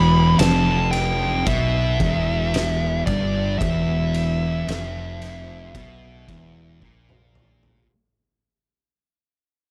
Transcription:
Already playing: E1 E2 B5
0.39 F1 F2 A5, snare, ride
0.91 G5, ride
1.47 B1 B2 E5, kick, ride
2.00 E1 E2, kick, ride
2.54 snare, ride
3.06 G1 G2 D5, kick, ride
3.58 E1 E2 E5, kick, ride
4.14 ride
4.67 F1 F2, snare, ride
5.22 ride
5.74 B1 B2, kick, ride
6.26 E1 E2, kick, ride
6.80 A#1 A#2, kick
7.09 mid tom
7.35 mid tom
7.63 floor tom

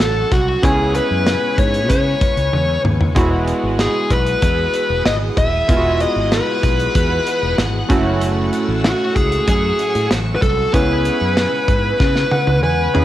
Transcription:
Already playing: F#3 A3 C#4 E4 F#4 A4 F#5 C#6
0.00 A1, snare, closed hi-hat
0.32 C2 F#4, kick, closed hi-hat
0.63 C#2 C#3 G#3 B3 C#4 E4 G#4 B4 G#5 C#6, kick, closed hi-hat
0.94 G#3 C#4 B4, closed hi-hat
1.11 F#2
1.26 snare, closed hi-hat
1.58 G#2 C#5, kick, closed hi-hat
1.74 closed hi-hat
1.88 C#3 G#3 C#5, kick, closed hi-hat
1.95 C#4
2.21 kick, closed hi-hat
2.37 C#2, closed hi-hat
2.53 E2, high tom
2.84 D#2, mid tom
3.01 floor tom
3.15 E1 E3 G#3 B3 E4 F#4 G#4 F#5 D#6, kick, closed hi-hat
3.47 B3 E4, closed hi-hat
3.63 G#1
3.79 G#4, snare, closed hi-hat
4.10 B1 B4, kick, closed hi-hat
4.27 closed hi-hat
4.40 E2 E3 B3, kick, closed hi-hat
4.47 E4
4.74 closed hi-hat
4.90 E1
5.05 G#1 D#5, snare, closed hi-hat
5.37 D#1 E5, kick, closed hi-hat
5.68 E1 E3 G#3 B3 E4 F4 F#6, kick, closed hi-hat
5.77 F#4
6.00 B3 E4 D#5, closed hi-hat
6.16 G#1
6.32 B4, snare, closed hi-hat
6.63 B1, kick, closed hi-hat
6.80 closed hi-hat
6.95 E2 E3 B3 E4, kick, closed hi-hat
7.27 closed hi-hat
7.43 E1
7.58 G#1, snare, closed hi-hat
7.89 F#1 F#3 A3 C#4 E4 F#4 C#6 E6, kick, closed hi-hat
8.21 closed hi-hat
8.53 C#4 F#4, closed hi-hat
8.68 A1
8.84 F#4, snare, closed hi-hat
9.16 C#2 G#4, kick, closed hi-hat
9.32 closed hi-hat
9.46 F#2 F#3 C#4, kick, closed hi-hat
9.53 F#4
9.79 closed hi-hat
9.95 A2, closed hi-hat
10.11 A1, snare, closed hi-hat
10.35 B4
10.42 C2 A4, kick, closed hi-hat
10.72 C#2 C#3 G#3 B3 C#4 E4 G#4 B4 G#5, kick, closed hi-hat
11.05 G#3 C#4, closed hi-hat
11.21 F#2
11.37 snare, closed hi-hat
11.68 G#2, kick, closed hi-hat
11.98 C#3 G#3, kick, snare
12.05 C#4
12.16 snare
12.31 F#5, high tom
12.47 C#2, high tom
12.63 E2 B4 G#5
12.94 D#2 B3 C#4 E4 G#4 B5, floor tom

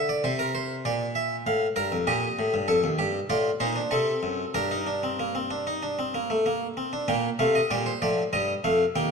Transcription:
Already playing: D3
0.09 D5
0.24 C3 C5
0.39 A#4
0.55 C5
0.85 A#2 D5
1.15 E5
1.47 A2 F5
1.76 G2 A#4
1.92 F2
2.07 A#2 G4 D#5
2.39 A2
2.54 G2
2.68 F2 A4
2.84 D#2
2.99 G2 G4
3.30 A2 F4 D5
3.60 A#2 D#4 C5
3.76 D4
3.91 C3 C4 A4
4.23 F#2
4.54 G2 D4 A#4
4.71 D#4
4.87 D4
5.03 C4
5.20 A#3
5.35 C4
5.51 D4
5.67 D#4
5.83 D4
5.99 C4
6.14 A#3
6.30 A3
6.46 A#3
6.77 C4
6.93 D4
7.08 A#2 A#3 G5
7.39 C3 A3 F5
7.55 D#5
7.71 A#2 G3 D5
7.86 C5
8.02 A2 F3 D5
8.33 G2 G3 D#5
8.64 F2 A3 F5
8.96 D#2 A#3 G5

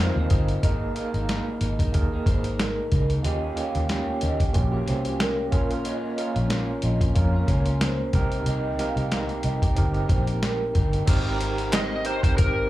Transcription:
Already playing: D#4 F4 A#4 C5 F5 G#5 C6
0.00 G#2 F3 C4 D#4
0.16 D#2 F3 C4 D#4
0.30 G1 F3 C4 D#4 D#5, kick, closed hi-hat
0.48 closed hi-hat
0.62 G#1 G#2 D#3 A#3 D#4 G#4 A#4 D#5, kick, closed hi-hat
0.94 G#2 D#3 A#3 D#4 G#4 A#4 F5, closed hi-hat
0.99 D#4
1.14 G#1 D#3 A#3 D#4, closed hi-hat
1.29 G#2 D#3 A#3 D#4, snare, closed hi-hat
1.61 G#1 G#2 D#3 A#3 D#4 D#5, closed hi-hat
1.79 D#3 A#3 D#4, kick, closed hi-hat
1.92 D#2 A#3 D#4 G#4 A#4, kick, closed hi-hat
2.12 D#3 A#3 D#4
2.26 G#1 G#2 D#3 A#3 D#4 C5, kick, closed hi-hat
2.44 D#3 A#3 D#4, closed hi-hat
2.59 A#4, snare, closed hi-hat
2.91 C#2 G#2 D#3 A#3 D#4, kick, closed hi-hat
3.10 closed hi-hat
3.23 D#2 D#3 A#3 C#4 F4 G4 D#5, closed hi-hat
3.56 D#3 A#3 C#4 F4 G4 F5, closed hi-hat
3.75 D#2 A#3 C#4 G4, closed hi-hat
3.89 D#3 A#3 C#4 G4, snare, closed hi-hat
4.21 D#2 D#3 A#3 C#4 G4 D#5, closed hi-hat
4.38 A#3 C#4 G4, kick, closed hi-hat
4.54 A#1 A#3 C#4 F4 F#4, kick, closed hi-hat
4.62 G4
4.72 A#3 C#4 G4
4.86 C2 D#3 A#3 C#4 G4 C5, closed hi-hat
5.04 A#3 C#4 G4, closed hi-hat
5.20 A#4, snare, closed hi-hat
5.51 A#1 A#2 A#3 C#4 F4 A#4, kick, closed hi-hat
5.55 F4
5.71 A#3 C#4 F4, closed hi-hat
5.84 A#2 A#3 C#4 F4 D#5, closed hi-hat
6.17 A#2 A#3 C#4 F4 A#4 F5, closed hi-hat
6.35 A#1 A#3 C#4 F4, closed hi-hat
6.50 A#2 A#3 C#4 F4, snare, closed hi-hat
6.82 A#1 A#2 A#3 C#4 F4 D#5, closed hi-hat
7.01 A#3 C#4 F4, kick, closed hi-hat
7.15 F2 A#3 C#4 F4 A#4, kick, closed hi-hat
7.33 A#3 C#4 F4
7.47 C#2 A#2 A#3 C#4 F4 C#5, kick, closed hi-hat
7.66 A#3 C#4 F4, closed hi-hat
7.81 C5, snare, closed hi-hat
8.12 C2 C3 A#3 C4 D#4 G4 A#4, kick, closed hi-hat
8.32 closed hi-hat
8.46 C2 C3 A#3 D#4 G4 D#5, closed hi-hat
8.78 C3 A#3 C4 D#4 G4 A#4 F5, snare, closed hi-hat
8.96 C2 A#3 D#4 G4, closed hi-hat
9.11 C3 A#3 D#4 G4, snare, closed hi-hat
9.29 closed hi-hat
9.43 C2 C3 A#3 D#4 G4 D#5, closed hi-hat
9.62 A#3 D#4 G4, kick, closed hi-hat
9.75 G1 C4 D#4 G4 A#4, kick, closed hi-hat
9.93 A#3 D#4 G4, closed hi-hat
10.09 A#1 C3 A#3 D#4 G4 C5, kick, closed hi-hat
10.27 A#3 D#4 G4, closed hi-hat
10.43 A#4, snare, closed hi-hat
10.74 G1 C3 A#3 D#4 G4, kick, closed hi-hat
10.93 closed hi-hat
11.06 G#1 G#3 C4 D#4 G4 A#4, kick, closed hi-hat, crash
11.40 G#3 C4 G4 A#4, closed hi-hat
11.58 C4 G4 A#4, closed hi-hat
11.72 G#3 C4 G4 A#4 D#5, snare, clap, closed hi-hat
12.04 G#3 C4 D#4 G4 A#4 C5, closed hi-hat
12.08 A#4
12.22 C4 G4 A#4 C5, kick, closed hi-hat
12.36 G#1 C4 D#4 G4 A#4, kick, closed hi-hat

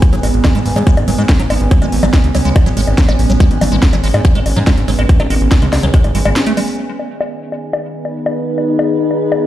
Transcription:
Already playing: B3 G#5
0.02 C#4, kick, closed hi-hat
0.13 G#1 F#3, closed hi-hat
0.23 G#1 G#3, open hi-hat, high bongo
0.34 G#1, closed hi-hat
0.44 F#3, kick, snare, closed hi-hat, high bongo
0.55 G#1 G#3, closed hi-hat
0.66 G#1, open hi-hat
0.76 G#2 F#3, closed hi-hat, high bongo
0.87 G#3, kick, closed hi-hat
0.97 G#1, closed hi-hat, high bongo
1.08 G#1 F#3, open hi-hat
1.18 G#2 G#3, closed hi-hat
1.29 kick, snare, closed hi-hat, high bongo
1.40 G#1 F#3, closed hi-hat
1.50 G#1 G#3, open hi-hat, high bongo
1.61 G#1
1.71 F#3, kick, closed hi-hat
1.82 G#1 G#3, closed hi-hat, high bongo
1.92 G#1, open hi-hat
2.03 G#1 F#3, closed hi-hat, high bongo
2.13 G#3, kick, snare, closed hi-hat
2.24 C#2, closed hi-hat
2.35 C#2 F#3, open hi-hat, high bongo
2.45 C#2 G#3, closed hi-hat
2.56 kick, closed hi-hat, high bongo
2.66 G#1 F#3, closed hi-hat
2.77 G#1 G#3, open hi-hat
2.87 G#1, closed hi-hat, high bongo
2.98 F#3, kick, snare, closed hi-hat
3.09 A1 G#3, closed hi-hat, high bongo
3.19 A1, open hi-hat
3.30 A1 F#3, closed hi-hat
3.40 G#3, kick, closed hi-hat, high bongo
3.51 G#1, closed hi-hat
3.61 G#1 F#3, open hi-hat, high bongo
3.72 G#1 G#3
3.82 kick, snare, closed hi-hat
3.93 G#1 F#3, closed hi-hat, high bongo
4.04 G#1 G#3, open hi-hat
4.14 G#2, closed hi-hat, high bongo
4.25 F#3, kick, closed hi-hat
4.35 G#1 G#3, closed hi-hat
4.46 G#1, open hi-hat, high bongo
4.56 G#2 F#3, closed hi-hat
4.67 G#3, kick, snare, closed hi-hat, high bongo
4.78 G#1, closed hi-hat
4.88 G#1 F#3, open hi-hat
4.99 G#1 G#3, closed hi-hat, high bongo
5.09 kick, closed hi-hat
5.20 G#1 F#3, closed hi-hat, high bongo
5.30 G#1 G#3, open hi-hat
5.41 G#1, closed hi-hat
5.51 F#3, kick, snare, closed hi-hat, high bongo
5.62 C#2 G#3, closed hi-hat
5.73 C#2, snare, open hi-hat, high bongo
5.83 C#2 F#3, closed hi-hat
5.94 G#3, kick, closed hi-hat
6.04 G#1, closed hi-hat, high bongo
6.15 G#1 G#3, open hi-hat
6.25 G#1 G#3, closed hi-hat, high bongo
6.36 snare, closed hi-hat
6.47 A3, closed hi-hat
6.57 G#3, open hi-hat, high bongo
6.68 open hi-hat
6.78 B3 D#4 B4
6.99 high bongo
7.04 G#4
7.21 high bongo
7.52 high bongo
7.73 high bongo
8.05 high bongo
8.26 high bongo
8.58 high bongo
8.79 high bongo
9.11 high bongo
9.32 high bongo

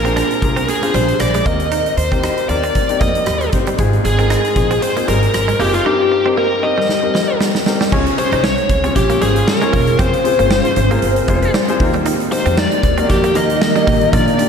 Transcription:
Already playing: A#1 A#2 D4 F4 G#4 A#4
0.04 C4 D4 F4 G#4 C5, closed hi-hat
0.16 D4, cross-stick, closed hi-hat
0.31 closed hi-hat
0.42 C2 D4 F4 G#4 A#4, muted clean electric guitar stroke, kick, closed hi-hat
0.56 C4, closed hi-hat
0.68 G#4, muted clean electric guitar stroke, closed hi-hat
0.82 A#3 D4 F4 G#4 C5, closed hi-hat
0.94 A#1 G3 C5, closed hi-hat
1.09 closed hi-hat
1.20 A#1 D5, muted clean electric guitar stroke, cross-stick, closed hi-hat
1.34 G#3, closed hi-hat
1.45 D#2 D#3 A#3 C4 D#4 G4 A#4 D#5, kick, closed hi-hat
1.60 closed hi-hat
1.72 D#4, closed hi-hat
1.86 closed hi-hat
1.97 D#2 C5, muted clean electric guitar stroke, closed hi-hat
2.12 C4 D#4 G4 A#4, kick, closed hi-hat
2.24 D#4, cross-stick, closed hi-hat
2.38 closed hi-hat
2.49 D#2 C4 D#4 G4 A#4 D5, muted clean electric guitar stroke, closed hi-hat
2.63 C4, closed hi-hat
2.75 kick, closed hi-hat
2.89 C4 D#4 G4 A#4, closed hi-hat
3.01 F2 A#3 D#5, kick, closed hi-hat
3.15 closed hi-hat
3.26 D#2 G3, cross-stick, closed hi-hat
3.41 muted clean electric guitar stroke, closed hi-hat
3.52 G1 C4 D#4 G4 C5, kick, closed hi-hat
3.67 G3, closed hi-hat
3.78 G#1 G#2 G#3 C4 D#4 F4 G#4, kick, closed hi-hat
3.93 closed hi-hat
4.04 G#1 G#4, muted clean electric guitar stroke, closed hi-hat
4.18 C4 D#4 F4 A#4, closed hi-hat
4.30 D#4, cross-stick, closed hi-hat
4.45 closed hi-hat
4.55 A#1 C4 D#4 F4 G#4, muted clean electric guitar stroke, kick, closed hi-hat
4.71 C4, closed hi-hat
4.82 C5, muted clean electric guitar stroke, closed hi-hat
4.95 A#3 C4 D#4 F4 G#4, closed hi-hat
5.08 G#1 G3 A#4, closed hi-hat
5.23 closed hi-hat
5.34 G#1, muted clean electric guitar stroke, cross-stick, closed hi-hat
5.48 G#3, closed hi-hat
5.58 F#1 A#3 C4 D#4 F4 G4 G#4, open hi-hat
5.74 F4, closed hi-hat
5.85 G2 C4 D#4 G4 A#4
6.12 muted clean electric guitar stroke
6.25 C4 D#4 G4 A#4
6.37 A#3 A#4
6.62 C4 D#4 G4 A#4 D#5, muted clean electric guitar stroke
6.78 G3
6.89 snare
7.02 C4 D#4 G4 A#4
7.15 F3, snare
7.40 G3, snare
7.55 muted clean electric guitar stroke, snare
7.66 C4 D#4 G4 A#4, snare
7.81 G3, snare
7.92 C#2 C#3 C#4 F4 G#4 C#5, kick, crash
8.07 closed hi-hat
8.18 C#4 F4 G#4 C5 C#5, muted clean electric guitar stroke, closed hi-hat
8.32 C2 D#4, closed hi-hat
8.44 C#4 C#5, snare
8.58 closed hi-hat
8.69 C#2, muted clean electric guitar stroke, kick, closed hi-hat
8.84 C4 C#4 F4 G#4 C#5, closed hi-hat
8.96 A#1 G4, muted clean electric guitar stroke, kick, closed hi-hat
9.10 A#3, closed hi-hat
9.21 G#1 G3 C#4 F4 G#4 C5, closed hi-hat
9.36 closed hi-hat
9.47 A#4, muted clean electric guitar stroke, snare
9.62 G#3 C#4 F4 G#4 C#5, closed hi-hat
9.73 E1 A#3, kick, open hi-hat
9.87 closed hi-hat
9.99 F1 C4 F4 G#4 C5, kick, closed hi-hat
10.14 closed hi-hat
10.24 C4 F4 G#4 C5, muted clean electric guitar stroke, closed hi-hat
10.39 G1 A#3, closed hi-hat
10.51 C4, snare
10.65 closed hi-hat
10.76 G#1, muted clean electric guitar stroke, closed hi-hat
10.90 A#3 C4 F4 G#4 A#4, closed hi-hat
11.02 G1, closed hi-hat
11.16 closed hi-hat
11.28 F1 G#3 C4 F4 G#4 C5, kick, closed hi-hat
11.42 closed hi-hat
11.54 G3, snare
11.68 C4 F4 G#4 C5, muted clean electric guitar stroke, closed hi-hat
11.80 D#2 D#3 A#3 D#4 G4 A#4, kick, open hi-hat
11.94 G3, closed hi-hat
12.06 D#4, closed hi-hat
12.20 closed hi-hat
12.32 A#3 D#4 G4 A#4 C5, muted clean electric guitar stroke, closed hi-hat
12.46 F2 C4, closed hi-hat
12.57 D#4 D5, snare
12.72 closed hi-hat
12.83 D#2, muted clean electric guitar stroke, kick, closed hi-hat
12.98 A#3 C4 D#4 F#4 A#4, closed hi-hat
13.05 G4
13.10 F2 G4, muted clean electric guitar stroke, kick, closed hi-hat
13.24 A#3, closed hi-hat
13.35 D#2 F3 A#3 D#4 G4 A#4 D#5, closed hi-hat
13.50 closed hi-hat
13.61 D#5, muted clean electric guitar stroke, snare
13.75 G3 A#3 D#4 G4 A#4, closed hi-hat
13.87 A1 A#3, kick, open hi-hat
14.01 closed hi-hat
14.13 A#1 A#2 A#3 D4 F4 A#4 D5, kick, closed hi-hat
14.28 closed hi-hat
14.39 A#3 D4 F4 G4, muted clean electric guitar stroke, closed hi-hat

